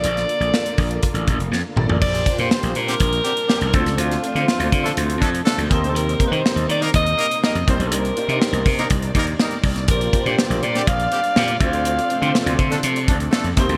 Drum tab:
CC |----------------|x---------------|----------------|----------------|
HH |xxxx-xoxxxxx----|-xxx-xxxxxxx-xxx|xxxx-xxxxxxx-xxx|xxxx-xxxxxxx-xxx|
SD |-o--o-------o---|----o--o----o--o|-o--o--o----o---|----o--o----o---|
T2 |--------------o-|----------------|----------------|----------------|
FT |---------------o|----------------|----------------|----------------|
BD |------o-o-o-----|o-o-----o-----o-|------o---o---o-|--o-----o-----o-|

CC |----------------|----------------|----------------|
HH |xxxx-xoxxxxx-xox|xxxx-xxxxxxx-xxx|xxxx-xxxxxxx-xxx|
SD |----o--o----o--o|----o--o----o---|----o--o----o---|
T2 |----------------|----------------|----------------|
FT |----------------|----------------|----------------|
BD |------o-o-o---o-|o-o-----o-----o-|------o---o---o-|